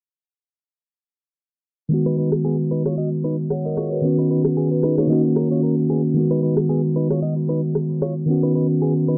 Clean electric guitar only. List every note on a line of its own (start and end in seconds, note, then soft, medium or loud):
2.06 2.15 D#4 medium
2.06 2.15 B4 medium
2.18 2.29 D#4 medium
2.18 2.29 B4 medium
2.45 2.56 B3 medium
2.45 2.55 G#4 medium
2.71 2.82 D#4 medium
2.71 2.82 B4 medium
2.86 2.95 F4 soft
2.86 2.95 C#5 medium
2.98 3.09 F#4 medium
2.98 3.09 D#5 medium
3.24 3.36 D#4 medium
3.24 3.35 B4 medium
3.77 3.89 F4 medium
3.77 3.88 C#5 medium
4.19 4.28 D#4 medium
4.19 4.27 B4 medium
4.30 4.42 D#4 medium
4.30 4.41 B4 medium
4.57 4.68 B3 medium
4.57 4.68 G#4 medium
4.84 4.95 D#4 medium
4.84 4.94 B4 medium
4.98 5.07 F4 medium
4.98 5.07 C#5 medium
5.10 5.21 F#4 medium
5.10 5.21 D#5 medium
5.37 5.48 C#4 medium
5.37 5.47 A#4 medium
5.51 5.61 F4 medium
5.51 5.60 C#5 medium
5.63 5.74 C#4 medium
5.63 5.74 A#4 medium
5.90 6.01 B3 medium
5.90 6.01 G#4 medium
6.31 6.40 D#4 medium
6.31 6.40 B4 medium
6.43 6.54 D#4 medium
6.43 6.54 B4 medium
6.69 6.81 B3 medium
6.69 6.80 G#4 medium
6.96 7.07 D#4 medium
6.96 7.07 B4 medium
7.11 7.20 F4 soft
7.11 7.19 C#5 medium
7.22 7.34 F#4 medium
7.22 7.33 D#5 medium
7.49 7.60 D#4 medium
7.49 7.60 B4 medium
8.02 8.13 F4 medium
8.02 8.13 C#5 medium
8.43 8.53 D#4 medium
8.43 8.52 B4 medium
8.55 8.67 D#4 medium
8.55 8.66 B4 medium
8.82 8.93 B3 medium
8.82 8.93 G#4 medium
9.08 9.18 D#4 medium
9.08 9.18 B4 medium